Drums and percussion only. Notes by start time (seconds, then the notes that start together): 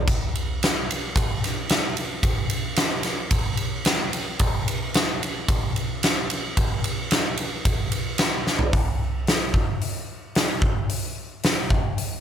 0.08 kick, ride, splash
0.35 ride
0.63 snare, ride
0.91 ride
1.16 kick, ride
1.44 snare, ride
1.69 snare, ride
1.97 ride
2.23 kick, ride
2.50 ride
2.76 snare, ride
3.03 snare, ride
3.31 kick, ride
3.57 ride
3.85 snare, ride
4.13 ride
4.39 kick, ride
4.68 ride
4.94 snare, ride
5.23 ride
5.48 kick, ride
5.76 ride
6.03 snare, ride
6.30 ride
6.57 kick, ride
6.84 ride
7.11 snare, ride
7.37 ride
7.65 kick, ride
7.92 ride
8.18 snare, ride
8.47 snare
8.59 floor tom
8.73 kick, open hi-hat
9.27 snare, open hi-hat
9.54 kick
9.81 open hi-hat
10.35 snare, open hi-hat
10.62 kick
10.89 open hi-hat
11.43 snare, open hi-hat
11.70 kick
11.98 open hi-hat